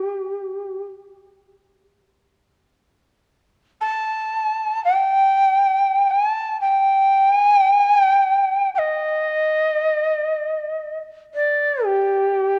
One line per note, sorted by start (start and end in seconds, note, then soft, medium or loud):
0.00 0.83 G4 medium
3.80 4.81 A5 medium
4.84 6.11 G5 medium
6.10 6.29 G#5 medium
6.29 6.60 A5 medium
6.61 7.35 G5 loud
7.35 7.55 G#5 loud
7.55 7.77 G5 loud
7.77 7.97 G#5 loud
7.97 8.70 G5 loud
8.74 10.97 D#5 medium
8.74 8.79 G5 medium
11.34 11.85 D5 medium
11.84 12.59 G4 medium